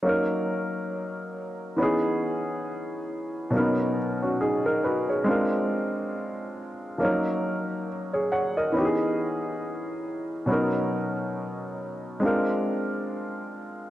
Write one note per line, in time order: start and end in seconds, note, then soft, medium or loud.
0.03 1.74 F#3 medium
0.03 1.75 A#3 medium
0.03 1.76 C#4 medium
0.07 1.77 D#4 medium
0.07 1.78 A#4 medium
1.76 3.48 E3 medium
1.76 3.49 B3 medium
1.76 3.50 C#4 medium
1.81 3.51 D#4 medium
1.81 3.51 G#4 medium
3.50 5.22 B2 medium
3.50 5.23 F#3 medium
3.50 3.60 A#3 soft
3.50 3.96 C#4 medium
3.55 3.97 D#4 medium
3.55 3.97 A#4 medium
3.59 5.27 B3 medium
4.22 4.40 C#4 soft
4.22 4.39 F#4 medium
4.41 4.65 D#4 medium
4.41 4.64 G#4 medium
4.66 4.83 D#4 medium
4.66 4.83 A#4 medium
4.84 5.08 F#4 medium
4.84 5.08 B4 medium
5.09 5.51 G#4 soft
5.09 5.50 C#5 medium
5.24 6.96 G#3 medium
5.24 6.97 C4 medium
5.24 6.98 D4 medium
5.29 6.98 F4 medium
5.29 6.99 A#4 medium
6.98 7.07 F3 soft
6.98 8.71 A#3 medium
6.98 8.72 C#4 medium
7.03 8.73 F#3 medium
7.03 8.72 D#4 medium
7.03 7.88 A#4 medium
8.13 8.31 G#4 medium
8.13 8.31 C#5 medium
8.32 8.56 C#5 medium
8.32 8.56 F#5 medium
8.57 8.98 A#4 soft
8.57 8.98 D#5 medium
8.72 10.44 E3 medium
8.72 10.45 B3 medium
8.72 10.46 C#4 medium
8.77 10.46 D#4 medium
8.77 8.84 G4 medium
8.85 10.50 G#4 medium
10.46 12.18 B2 medium
10.46 12.18 F#3 medium
10.46 12.19 B3 medium
10.46 12.20 C#4 medium
10.51 12.20 D#4 medium
10.51 12.21 A#4 medium
12.20 13.90 G#3 medium
12.20 13.90 C4 medium
12.20 13.90 D4 medium
12.25 13.90 F4 medium
12.25 13.90 A#4 medium